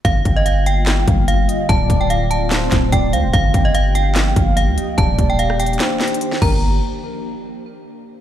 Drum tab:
CC |------------------------------------------------|------------------------------------------------|------------------------------------------------|------------------------------------------x-----|
HH |x-----x-----x-----x-----x-----x-----x-----x-----|x-----x-----x-----x-----x-----x-----x-----x-----|x-----x-----x-----x-----x-----x-----x-----x-----|x-----x-----x-----x-x-x-x-----x-x-x-x-----------|
CP |------------------------x-----------------------|------------------------x-----x-----------------|------------------------x-----------------------|------------------------x-----x-----------------|
SD |------------------------o-----------------------|------------------------o-----o-----------------|------------------------o-----------------------|---------------r--------o-----o--------o--------|
BD |o-----o-----------------------o-----------------|o-----o-----------------------o-----o-----------|o-----o-----------------------o-----------------|o-----o-----------------------------------o-----|

CC |------------------------------------------------|
HH |------------------------------------------------|
CP |------------------------------------------------|
SD |------------------------------------------------|
BD |------------------------------------------------|